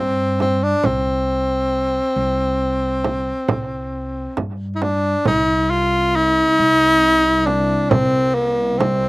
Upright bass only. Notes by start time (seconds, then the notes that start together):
Already playing: G2
0.84 C2
2.16 C2
3.49 C2
4.37 G2
5.27 C2
6.59 C2
7.92 C3
8.80 C2